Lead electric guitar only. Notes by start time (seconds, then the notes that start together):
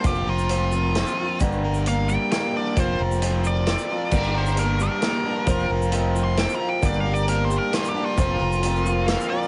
0.06 G4
0.30 F4
0.51 F4
1.88 F5
2.10 G5
2.32 G5
2.57 D5
2.80 C5
3.47 D5
4.38 C5
4.59 A#4
4.83 A#4
6.24 C6
6.38 G5
6.54 A#5
6.69 G5
6.85 D5
7.00 F5
7.13 D5
7.29 A#4
7.45 C5
7.58 A#4
7.74 F4
7.90 G4
8.05 F4
8.19 F4
9.06 F5
9.30 D5